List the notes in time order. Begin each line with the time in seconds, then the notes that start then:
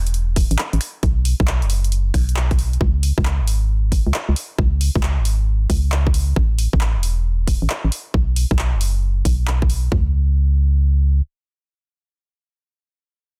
Already playing: E1
0.07 closed hi-hat
0.14 closed hi-hat
0.36 kick, open hi-hat
0.51 A1, closed hi-hat
0.58 clap
0.73 A1, closed hi-hat
0.81 finger snap, open hi-hat
1.03 B1, kick, closed hi-hat
1.25 open hi-hat
1.40 B1, kick
1.47 clap
1.62 F#1, closed hi-hat
1.70 open hi-hat
1.84 closed hi-hat
1.92 closed hi-hat
2.14 B1, finger snap, kick, open hi-hat
2.29 closed hi-hat
2.36 clap
2.51 finger snap, kick, closed hi-hat
2.59 open hi-hat
2.73 closed hi-hat
2.81 C#2, kick
3.03 open hi-hat
3.18 C#2, kick
3.25 clap
3.40 G#1
3.48 open hi-hat
3.92 kick, open hi-hat
4.07 C#2
4.14 clap
4.29 C#2
4.36 open hi-hat
4.58 C#2, kick
4.81 open hi-hat
4.95 C#2, kick
5.03 clap
5.18 G#1
5.25 open hi-hat
5.70 C#2, kick, open hi-hat
5.92 clap
6.07 kick
6.14 open hi-hat
6.36 A1, kick
6.59 open hi-hat
6.73 A1, kick
6.81 clap
6.95 E1
7.03 open hi-hat
7.47 kick, open hi-hat
7.62 A1
7.70 clap
7.84 A1
7.92 open hi-hat
8.14 B1, kick
8.36 open hi-hat
8.51 B1, kick
8.59 clap
8.73 F#1
8.81 open hi-hat
9.25 B1, kick, open hi-hat
9.47 clap
9.62 kick
9.70 open hi-hat
9.92 C#2, kick, floor tom